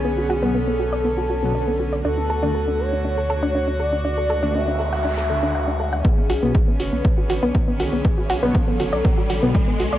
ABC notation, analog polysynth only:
X:1
M:4/4
L:1/16
Q:1/4=120
K:Bdor
V:1 name="Analog polysynth" clef=bass
z3 [B,,F,B,] z6 z [B,,F,B,] z4 | z3 [D,A,D] z12 | z3 [D,A,D] z6 [D,A,D] [D,A,D] z4 | z3 [B,,F,B,] z12 |
z3 [B,,F,B,] z6 z [B,,F,B,] z4 |]